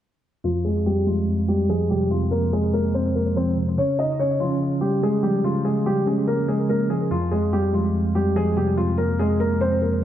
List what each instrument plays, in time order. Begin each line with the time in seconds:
0.44 tine electric piano F2, grand piano F3 F4
0.65 tine electric piano F2, grand piano G#3 G#4
0.86 tine electric piano F2, grand piano G3 G4
1.07 grand piano F3 F4, tine electric piano G#3
1.28 tine electric piano F2
1.48 tine electric piano F2, grand piano G3 G4
1.69 tine electric piano F3, grand piano G#3 G#4
1.90 tine electric piano C3, grand piano G3 G4
2.11 tine electric piano F2, grand piano F3 F4
2.31 tine electric piano F2, grand piano A#3 A#4
2.53 tine electric piano F2, grand piano G#3 G#4
2.73 tine electric piano G#3, grand piano A#3 A#4
2.94 tine electric piano F2, grand piano C4 C5
3.15 tine electric piano F2, grand piano A#3 A#4
3.36 tine electric piano F3, grand piano C4 C5
3.57 tine electric piano C3
3.78 tine electric piano C#3, grand piano C#4 C#5
3.98 tine electric piano C#3, grand piano D#4 D#5
4.19 tine electric piano C#3, grand piano C#4 C#5
4.40 grand piano F3 F4, tine electric piano C#4
4.61 tine electric piano C#3
4.81 tine electric piano C#3, grand piano G3 G4
5.02 tine electric piano G#3, grand piano G#3 G#4
5.23 tine electric piano F3, grand piano G3 G4
5.44 tine electric piano C#3, grand piano F3 F4
5.65 tine electric piano C#3, grand piano G#3 G#4
5.86 tine electric piano C#3, grand piano G3 G4
6.07 grand piano G#3 G#4, tine electric piano C#4
6.27 tine electric piano C#3, grand piano A#3 A#4
6.48 tine electric piano C#3, grand piano G#3 G#4
6.69 tine electric piano G#3, grand piano A#3 A#4
6.90 tine electric piano F3, grand piano G#3 G#4
7.11 tine electric piano F2, grand piano F3 F4
7.31 tine electric piano F2, grand piano G#3 G#4
7.52 tine electric piano F2, grand piano G3 G4
7.73 grand piano F3 F4, tine electric piano G#3
7.94 tine electric piano F2
8.15 tine electric piano F2, grand piano G3 G4
8.36 tine electric piano F3, grand piano G#3 G#4
8.57 tine electric piano C3, grand piano G3 G4
8.77 tine electric piano F2, grand piano F3 F4
8.98 tine electric piano F2, grand piano A#3 A#4
9.19 tine electric piano F2, grand piano G#3 G#4
9.40 tine electric piano G#3, grand piano A#3 A#4
9.61 tine electric piano F2, grand piano C4 C5
9.82 tine electric piano F2, grand piano A#3 A#4